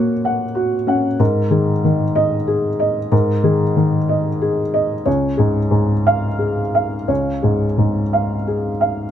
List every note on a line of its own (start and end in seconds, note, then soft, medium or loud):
0.00 1.15 A#2 medium
0.00 1.22 A#3 soft
0.00 0.12 F#4 soft
0.00 1.22 C#5 soft
0.00 1.15 C#6 soft
0.00 1.17 F#6 soft
0.00 1.18 C#7 soft
0.25 0.75 F#5 soft
0.55 1.06 F#4 soft
0.87 1.19 C#4 soft
0.87 1.20 F#5 soft
1.19 3.08 G#2 medium
1.19 1.71 A#4 soft
1.50 1.83 D#3 soft
1.50 2.02 G#4 soft
1.84 2.35 D#3 soft
2.16 2.67 D#5 medium
2.47 2.99 G#4 soft
2.80 3.31 D#5 medium
3.11 5.02 G#2 medium
3.11 3.63 A#4 medium
3.44 3.75 D#3 soft
3.44 3.96 G#4 medium
3.77 4.28 D#3 medium
4.09 4.61 D#5 soft
4.42 4.93 G#4 medium
4.74 5.06 D#5 medium
5.06 7.06 C#2 medium
5.06 5.59 C#5 medium
5.37 5.69 G#2 soft
5.37 5.91 G#4 medium
5.71 6.25 G#2 soft
6.07 6.61 F5 medium
6.39 6.95 G#4 soft
6.75 7.31 F5 soft
7.08 9.11 C#2 soft
7.08 7.66 C#5 soft
7.42 7.76 G#2 soft
7.42 8.00 G#4 soft
7.78 8.35 G#2 soft
8.13 8.70 F5 soft
8.47 9.04 G#4 soft
8.81 9.11 F5 soft